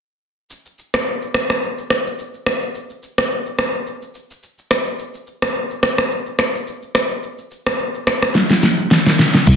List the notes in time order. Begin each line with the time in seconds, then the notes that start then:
0.50 shaker
0.66 shaker
0.78 shaker
0.94 finger snap, cross-stick, shaker
1.06 shaker
1.22 shaker
1.34 finger snap, cross-stick, shaker
1.50 finger snap, cross-stick, shaker
1.62 shaker
1.78 shaker
1.90 finger snap, cross-stick, shaker
2.07 shaker
2.19 shaker
2.34 shaker
2.46 finger snap, cross-stick, shaker
2.62 shaker
2.75 shaker
2.90 shaker
3.03 shaker
3.18 finger snap, cross-stick, shaker
3.30 shaker
3.46 shaker
3.58 finger snap, cross-stick, shaker
3.74 shaker
3.87 shaker
4.02 shaker
4.14 shaker
4.31 shaker
4.43 shaker
4.58 shaker
4.71 finger snap, cross-stick, shaker
4.86 shaker
4.99 shaker
5.14 shaker
5.27 shaker
5.42 finger snap, cross-stick, shaker
5.54 shaker
5.70 shaker
5.83 finger snap, cross-stick, shaker
5.98 finger snap, cross-stick, shaker
6.11 shaker
6.26 shaker
6.39 finger snap, cross-stick, shaker
6.55 shaker
6.67 shaker
6.82 shaker
6.95 finger snap, cross-stick, shaker
7.10 shaker
7.23 shaker
7.38 shaker
7.51 shaker
7.66 finger snap, cross-stick, shaker
7.78 shaker
7.94 shaker
8.07 finger snap, cross-stick, shaker
8.22 finger snap, cross-stick, shaker
8.35 snare, shaker
8.50 snare, shaker
8.63 snare, shaker
8.79 shaker
8.91 snare, shaker
9.06 snare, shaker
9.19 snare, shaker
9.34 snare, shaker
9.47 C2, kick, crash, shaker